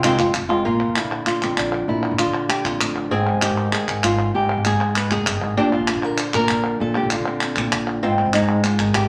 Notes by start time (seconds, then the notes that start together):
Already playing: C2
0.03 C3 D#3 G#3 C4 F4, clap
0.19 F1 G#3 C4 F4, clap
0.34 F1, muted nylon-string guitar stroke, clap
0.42 F1
0.49 G#3 C4 F4
0.65 A#1 A#2 A#3 F4
0.80 clap
0.88 A#1
0.96 D3 E4, clap
1.04 A#2
1.12 clap
1.26 F4, clap
1.42 A#1 F2 C4, clap
1.57 A#1 D4, clap
1.72 clap
1.88 A#1 A#2 E4
2.03 clap
2.11 A#1
2.19 D3 F4, clap
2.26 A#2
2.34 clap
2.49 G4, clap
2.64 A#1 F2 F4, clap
2.80 A1 C4, clap
2.96 clap
3.11 G#1 G#2 C4 G#4
3.34 G#1
3.42 D#3 G4, clap
3.50 G#2
3.57 clap
3.72 G#4, clap
3.88 G#1 G#2, clap
4.04 G#1 F4, clap
4.19 clap
4.34 G#1 G#2 G4
4.50 clap
4.57 G#1
4.65 G#3 G#4, clap
4.73 G#2
4.81 clap
4.96 B4, clap
5.11 F1 D#3 G#4, clap
5.27 G1 G2, clap
5.42 G#1 G#2, clap
5.57 A#1 A#2 D4 G4
5.73 F4
5.80 A#1
5.87 D3 A4, clap
5.96 A#2
6.03 A#4, clap
6.18 C5, clap
6.34 A#1 A#2 A#4, clap
6.49 A#1, clap
6.64 clap
6.80 A#1 A#2 A4
6.95 G4, clap
7.03 A#1
7.11 D3 F4, clap
7.19 A#2
7.26 C4, clap
7.41 C4, clap
7.56 A#1 A#2 C4, clap
7.72 A#1, clap
7.87 clap
8.03 G#1 G#2 C4 F4
8.18 C4, clap
8.26 G#1
8.33 G#3 D#4, clap
8.41 G#2
8.48 clap
8.64 F4, clap
8.79 G#1 D#3 D#4, clap
8.94 G#1 G4, clap